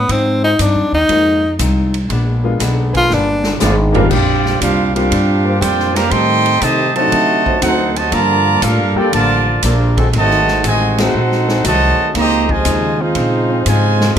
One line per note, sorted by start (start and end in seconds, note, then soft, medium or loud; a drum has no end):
0.00 0.13 B3 loud
0.08 0.45 G#2 medium
0.08 0.58 G#2 medium
0.08 0.45 F3 medium
0.08 0.46 C4 medium
0.08 0.43 C4 medium
0.08 0.46 D#4 medium
0.08 kick soft
0.08 ride medium
0.42 0.54 G#3 loud
0.42 0.53 D#4 medium
0.42 0.63 D#4 loud
0.42 0.53 F4 medium
0.42 0.54 C5 loud
0.59 0.77 G2 medium
0.59 0.95 G#2 medium
0.59 0.96 F3 medium
0.59 0.96 C4 medium
0.59 0.94 D4 medium
0.59 0.96 D#4 medium
0.59 kick soft
0.59 hi-hat pedal medium
0.59 ride medium
0.75 0.92 F2 medium
0.92 1.08 D#2 medium
0.92 1.56 D#4 loud
1.09 1.58 F2 medium
1.09 1.45 G#2 soft
1.09 1.46 F3 medium
1.09 1.40 G#3 medium
1.09 1.40 A#3 medium
1.09 1.41 C4 medium
1.09 1.46 C4 medium
1.09 1.41 D#4 medium
1.09 1.47 D#4 medium
1.09 1.41 F4 medium
1.09 kick soft
1.09 ride medium
1.59 2.08 C2 loud
1.59 1.95 G#2 medium
1.59 1.96 F3 medium
1.59 1.96 C4 medium
1.59 1.96 D#4 medium
1.59 kick soft
1.59 hi-hat pedal medium
1.59 ride medium
1.94 ride medium
2.09 2.58 A#1 loud
2.09 2.45 A#2 medium
2.09 2.46 G#3 medium
2.09 2.46 B3 medium
2.09 2.47 D4 medium
2.09 kick soft
2.09 ride medium
2.44 2.58 G#3 medium
2.44 2.58 A#3 medium
2.44 2.58 B3 medium
2.44 2.59 D4 medium
2.44 2.59 F4 medium
2.60 3.08 B1 loud
2.60 2.96 A#2 medium
2.60 2.96 G#3 medium
2.60 2.96 B3 medium
2.60 2.97 D4 medium
2.60 kick soft
2.60 snare soft
2.60 hi-hat pedal medium
2.60 ride medium
2.92 3.56 A#3 loud
2.92 3.56 D4 loud
2.92 3.56 G#4 loud
2.92 3.56 B4 loud
2.92 kick medium
2.92 ride soft
2.97 3.15 F4 loud
3.09 3.59 G1 loud
3.09 3.46 A#2 medium
3.09 3.46 G#3 medium
3.09 3.47 B3 soft
3.09 3.47 D4 medium
3.09 snare medium
3.14 3.62 D4 medium
3.44 snare medium
3.60 4.09 G#1 loud
3.60 3.96 A#2 medium
3.60 3.75 F3 medium
3.60 3.76 G#3 medium
3.60 3.97 G#3 medium
3.60 3.76 B3 medium
3.60 3.97 B3 medium
3.60 3.75 D4 medium
3.60 3.97 D4 medium
3.60 3.77 F4 medium
3.60 3.77 G#4 medium
3.60 3.77 D5 medium
3.60 snare medium
3.60 hi-hat pedal medium
3.92 4.09 G3 medium
3.92 4.09 G#3 medium
3.92 4.04 A#3 loud
3.92 4.09 A#3 medium
3.92 4.09 C4 medium
3.92 4.04 D4 loud
3.92 4.08 D4 medium
3.92 4.10 D4 medium
3.92 4.09 F4 medium
3.92 4.10 F4 medium
3.92 4.04 G4 loud
3.92 4.10 G#4 medium
3.92 4.04 A#4 loud
3.92 4.10 B4 medium
3.92 4.10 F5 loud
3.92 floor tom loud
4.09 4.59 A#1 medium
4.09 4.47 A#2 medium
4.09 4.59 G3 medium
4.09 4.47 G3 medium
4.09 4.59 D4 medium
4.09 4.61 F4 loud
4.09 4.60 G4 medium
4.09 4.61 C5 medium
4.09 4.61 D5 medium
4.09 4.61 G5 loud
4.09 kick medium
4.09 crash medium
4.14 4.48 C4 medium
4.14 4.48 D4 medium
4.46 snare soft
4.60 5.10 C2 medium
4.60 4.97 A#2 medium
4.60 4.92 G3 medium
4.60 4.97 G3 medium
4.60 4.98 C4 medium
4.60 4.92 D4 medium
4.60 4.94 D4 medium
4.60 4.98 D4 medium
4.60 4.92 F4 medium
4.60 4.94 G4 medium
4.60 4.94 C5 medium
4.60 4.94 F5 loud
4.60 kick soft
4.60 hi-hat pedal medium
4.60 ride medium
4.93 5.56 G3 medium
4.93 5.09 G3 medium
4.93 5.10 A#3 medium
4.93 5.10 C4 medium
4.93 5.57 D4 medium
4.93 5.10 D4 medium
4.93 5.58 D4 medium
4.93 5.57 F4 medium
4.93 5.10 F4 medium
4.93 5.58 G4 medium
4.93 5.58 C5 medium
4.93 5.58 F5 loud
4.93 ride medium
5.11 5.60 G2 loud
5.11 5.47 A#2 soft
5.11 5.47 G3 medium
5.11 5.48 C4 medium
5.11 5.49 D4 soft
5.11 kick soft
5.11 ride medium
5.44 6.08 A#3 loud
5.44 6.08 D4 medium
5.44 6.08 G4 medium
5.44 6.08 C5 loud
5.60 6.10 F2 loud
5.60 5.97 A#2 medium
5.60 5.92 G3 medium
5.60 5.97 G3 medium
5.60 5.98 C4 medium
5.60 5.95 D4 medium
5.60 5.98 D4 medium
5.60 5.96 F4 loud
5.60 5.95 G4 medium
5.60 5.95 C5 medium
5.60 5.95 D5 loud
5.60 5.96 G5 loud
5.60 kick soft
5.60 hi-hat pedal medium
5.60 ride medium
5.79 snare soft
5.93 6.10 F3 medium
5.93 6.08 G3 loud
5.93 6.10 A#3 medium
5.93 6.12 G4 medium
5.93 6.12 D5 medium
5.93 6.12 F5 medium
5.93 6.12 A#5 loud
5.93 snare medium
5.93 ride medium
6.09 6.47 A2 medium
6.09 6.60 A2 loud
6.09 6.59 D#3 loud
6.09 6.61 G3 loud
6.09 6.48 G3 medium
6.09 6.60 C4 loud
6.09 6.48 C4 medium
6.09 6.62 A4 loud
6.09 6.61 D#5 loud
6.09 6.62 G5 loud
6.09 6.62 C6 loud
6.09 kick soft
6.09 ride medium
6.14 6.49 D#4 medium
6.46 ride medium
6.60 6.97 A2 medium
6.60 6.93 C3 medium
6.60 7.10 C3 loud
6.60 6.95 D#3 medium
6.60 6.97 G3 medium
6.60 6.92 A3 medium
6.60 6.98 C4 medium
6.60 6.98 D#4 medium
6.60 6.97 G4 medium
6.60 6.96 C5 loud
6.60 6.96 D#5 loud
6.60 6.96 A5 loud
6.60 kick soft
6.60 hi-hat pedal medium
6.60 ride medium
6.94 7.57 C3 medium
6.94 7.57 F#3 medium
6.94 7.10 F#3 medium
6.94 7.57 A3 loud
6.94 7.10 C4 medium
6.94 7.11 D4 medium
6.94 7.11 D#4 medium
6.94 7.59 F#4 loud
6.94 7.11 A4 medium
6.94 7.59 C5 medium
6.94 7.59 D#5 medium
6.94 7.59 A5 loud
6.94 ride soft
7.11 7.48 D3 soft
7.11 7.61 D3 medium
7.11 7.48 F#3 medium
7.11 7.48 C4 medium
7.11 7.49 D#4 medium
7.11 kick soft
7.11 ride medium
7.44 8.08 F#3 loud
7.44 8.09 D4 medium
7.44 8.08 D#4 medium
7.44 8.08 C5 loud
7.44 kick medium
7.61 8.11 D2 loud
7.61 7.98 D3 medium
7.61 7.98 F#3 medium
7.61 7.92 A3 medium
7.61 7.93 C4 medium
7.61 7.98 C4 medium
7.61 7.95 D#4 medium
7.61 7.99 D#4 medium
7.61 7.93 F#4 medium
7.61 7.95 A4 medium
7.61 7.95 C5 medium
7.61 7.95 F#5 loud
7.61 kick soft
7.61 hi-hat pedal medium
7.61 ride medium
7.94 8.11 C3 medium
7.94 8.11 F#3 medium
7.94 8.11 A3 medium
7.94 8.13 F#4 medium
7.94 ride medium
7.98 8.13 C5 medium
7.98 8.13 D#5 medium
7.98 8.12 A5 loud
8.11 8.61 G2 loud
8.11 8.63 D3 medium
8.11 8.63 F3 loud
8.11 8.48 G3 medium
8.11 8.61 A#3 loud
8.11 8.48 A#3 medium
8.11 8.49 F4 medium
8.11 8.63 F4 loud
8.11 8.49 A4 medium
8.11 8.63 D5 loud
8.11 8.63 A5 loud
8.11 8.63 A#5 loud
8.11 kick soft
8.11 ride medium
8.61 8.78 A2 loud
8.61 8.98 G3 medium
8.61 8.94 A#3 medium
8.61 8.99 A#3 medium
8.61 8.95 D4 medium
8.61 8.98 D4 medium
8.61 8.96 F4 medium
8.61 8.99 F4 medium
8.61 8.98 A4 medium
8.61 9.00 A4 medium
8.61 8.96 A#4 medium
8.61 8.98 F5 loud
8.61 kick soft
8.61 hi-hat pedal medium
8.61 ride medium
8.78 8.94 G2 medium
8.94 9.11 F2 medium
8.94 9.11 G3 medium
8.94 9.08 G3 loud
8.94 9.10 A#3 medium
8.94 9.07 A#3 loud
8.94 9.11 A#3 medium
8.94 9.13 D4 medium
8.94 9.11 D4 medium
8.94 9.08 F4 loud
8.94 9.11 F4 medium
8.94 9.14 F4 medium
8.94 9.12 G4 medium
8.94 9.08 A4 loud
8.94 9.12 A4 medium
8.94 9.13 A#4 medium
8.94 9.13 D5 medium
8.94 9.13 G5 medium
9.11 9.62 A1 medium
9.11 9.59 D3 medium
9.11 9.59 F3 medium
9.11 9.49 G3 soft
9.11 9.59 A#3 medium
9.11 9.50 A#3 medium
9.11 9.61 F4 medium
9.11 9.50 F4 medium
9.11 9.61 A#4 loud
9.11 9.60 D5 medium
9.11 9.61 A5 loud
9.11 kick soft
9.11 ride medium
9.16 9.50 A4 medium
9.62 10.12 A#1 loud
9.62 9.98 F3 medium
9.62 9.99 G3 medium
9.62 9.97 A#3 medium
9.62 10.00 A#3 medium
9.62 9.99 A#3 medium
9.62 9.97 D4 medium
9.62 10.00 F4 medium
9.62 9.99 F4 medium
9.62 9.99 A4 medium
9.62 10.01 A4 medium
9.62 9.99 D5 medium
9.62 kick soft
9.62 hi-hat pedal medium
9.62 ride loud
9.98 10.09 G#3 loud
9.98 10.09 C4 loud
9.98 10.09 F#4 loud
9.98 10.09 A4 loud
9.98 kick medium
9.98 ride medium
10.13 10.62 G#1 loud
10.13 10.50 G#3 medium
10.13 10.62 A3 loud
10.13 10.50 C4 medium
10.13 10.51 F#4 medium
10.13 10.51 A4 medium
10.13 kick soft
10.13 ride medium
10.17 10.62 D#3 medium
10.17 10.62 F#3 medium
10.17 10.63 F#4 loud
10.17 10.63 C5 medium
10.17 10.63 D#5 loud
10.17 10.63 A5 loud
10.30 snare soft
10.48 snare medium
10.64 11.13 A1 loud
10.64 10.97 C3 medium
10.64 10.97 D#3 medium
10.64 11.00 G#3 medium
10.64 10.97 G#3 medium
10.64 11.00 C4 medium
10.64 11.01 F#4 medium
10.64 10.98 F#4 medium
10.64 11.01 A4 medium
10.64 10.98 D#5 medium
10.64 kick soft
10.64 hi-hat pedal medium
10.64 ride medium
10.68 10.98 C5 medium
10.68 10.98 G#5 loud
10.98 11.13 A3 medium
10.98 11.13 C4 medium
10.98 11.66 C4 medium
10.98 11.13 D#4 medium
10.98 11.65 D#4 medium
10.98 11.67 D#4 medium
10.98 11.13 F#4 medium
10.98 11.66 F#4 medium
10.98 11.13 G#4 medium
10.98 11.67 C5 medium
10.98 11.67 F#5 loud
10.98 snare medium
10.98 ride medium
11.03 11.67 A4 medium
11.13 11.63 A#1 loud
11.13 11.50 G#3 medium
11.13 11.51 C4 soft
11.13 11.51 F#4 medium
11.13 11.52 A4 medium
11.32 snare soft
11.48 12.12 C4 loud
11.48 12.12 F#4 medium
11.48 12.12 G#4 loud
11.48 12.12 A4 loud
11.48 snare medium
11.64 11.97 C2 loud
11.64 12.12 D#3 medium
11.64 12.12 F#3 medium
11.64 12.00 G#3 medium
11.64 12.12 A3 medium
11.64 12.01 C4 medium
11.64 12.01 F#4 medium
11.64 12.01 A4 medium
11.64 12.13 C5 loud
11.64 12.13 A5 loud
11.64 kick soft
11.64 hi-hat pedal medium
11.64 ride medium
11.68 12.13 F#4 medium
11.68 12.13 D#5 loud
12.13 12.64 C#2 medium
12.13 12.50 C#3 soft
12.13 12.51 F3 medium
12.13 12.47 A#3 loud
12.13 12.51 C4 medium
12.13 12.52 D#4 medium
12.13 kick soft
12.13 snare soft
12.13 ride medium
12.18 12.49 G4 loud
12.18 12.49 C5 loud
12.18 12.49 D#5 loud
12.18 12.49 A#5 loud
12.49 13.00 C3 loud
12.49 13.00 F3 loud
12.49 12.98 G#3 loud
12.49 13.01 F4 medium
12.49 13.00 C5 medium
12.49 13.01 D#5 loud
12.49 13.01 G#5 loud
12.49 kick medium
12.65 13.14 D#2 medium
12.65 13.01 C#3 medium
12.65 13.01 F3 medium
12.65 13.02 C4 medium
12.65 13.02 D#4 medium
12.65 kick soft
12.65 hi-hat pedal medium
12.65 ride medium
13.00 13.64 G#3 medium
13.00 13.66 C4 medium
13.00 13.67 D#4 medium
13.00 13.67 F4 medium
13.00 13.67 G#4 medium
13.00 13.66 C5 medium
13.00 13.67 F5 medium
13.15 13.64 A#2 medium
13.15 13.51 C#3 medium
13.15 13.52 F3 soft
13.15 13.52 C4 medium
13.15 13.53 D#4 medium
13.15 kick soft
13.15 ride medium
13.49 14.13 F3 loud
13.49 14.13 C4 loud
13.49 14.13 D#4 medium
13.49 14.13 C5 loud
13.65 14.15 G#2 loud
13.65 14.12 C3 medium
13.65 14.02 C#3 medium
13.65 14.13 F3 medium
13.65 14.02 F3 medium
13.65 14.13 G#3 medium
13.65 14.03 C4 medium
13.65 14.03 D#4 medium
13.65 14.14 F4 medium
13.65 14.14 C5 medium
13.65 14.14 D#5 medium
13.65 14.14 G#5 loud
13.65 kick soft
13.65 hi-hat pedal medium
13.65 ride medium
14.01 snare medium
14.16 14.19 C3 medium